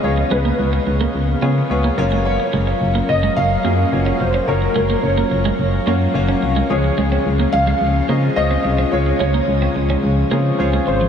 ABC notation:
X:1
M:4/4
L:1/16
Q:1/4=108
K:Db
V:1 name="Grand piano"
d2 _c8 z6 | d6 e2 f6 c2 | B2 B2 d8- d2 z2 | d6 f6 e4 |
d2 d8 z4 c2 |]
V:2 name="Grand piano"
[_CDFAd]6 z4 [CDFAd]2 [CDFAd]2 [B,DFGd]2- | [B,DFGd]4 z6 [B,DFGA]2 [B,DFGd]2 z2 | [B,DFGd]6 z4 [B,DFGd]2 [B,DFGd]2 z2 | [A,DFAd]6 z4 [CDFAe]2 [DFAcd]2 z2 |
[A,DFAd]6 z4 [CDFAd]2 [DFAcd]2 z2 |]
V:3 name="Analog polysynth"
[F,DA]12- [F,DA]2 [G,FB]2- | [G,FB]16- | [G,FB]12- [G,FB]2 z2 | [F,DA]16- |
[F,DA]16 |]
V:4 name="Analog synth pad"
[D,A,_Cf]12- [D,A,Cf]2 [G,DB]2- | [G,DB]16- | [G,DB]16 | [D,A,DF]16- |
[D,A,DF]16 |]
V:5 name="Clean electric guitar"
z2 A, B, z _C z B, z2 C z2 B, z A, | z2 A, D z B, z A, z2 B, z2 D z D | z2 A, B, z B, z A, z2 B, z2 D z A, | z2 A, C z B, z A, z2 B, z2 C z C |
z2 A, B, z C z D z2 B, z2 A, z F, |]
V:6 name="FM bass" clef=bass
D,,2 D,,2 D,,2 D,,2 D,,2 D,2 D,,2 G,,,2- | G,,,2 G,,,2 G,,,2 G,,,2 G,,,2 G,,2 G,,,2 F,,,2 | G,,,2 G,,,2 G,,,2 G,,,2 G,,,2 G,,2 G,,,2 C,,2 | D,,2 D,,2 D,,2 D,,2 D,,2 D,2 D,,2 C,,2 |
D,,2 D,,2 D,,2 D,,2 D,,2 D,2 D,,2 A,,,2 |]